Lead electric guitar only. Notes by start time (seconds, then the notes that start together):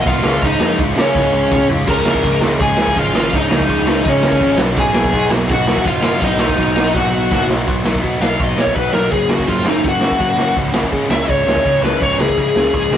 0.07 F4 F5
0.45 D#4 D#5
0.99 C#4 C#5
1.89 A#4 A#5
2.60 G#4 G#5
2.98 F4 F5
3.35 D#4 D#5
4.08 C#4 C#5
4.78 G#4 G#5
5.51 F#4 F#5
5.86 F4 F5
6.23 D#4 D#5
6.96 F#4 F#5
8.22 F5
8.44 D#5
8.61 C#5
8.75 B4
8.93 A#4
9.12 G#4
9.31 F#4
9.48 F4
9.68 D#4
9.89 F#4
11.11 E5
11.30 C#5
11.84 B4
12.02 C#5
12.20 G#4
12.41 G#4
12.75 G#4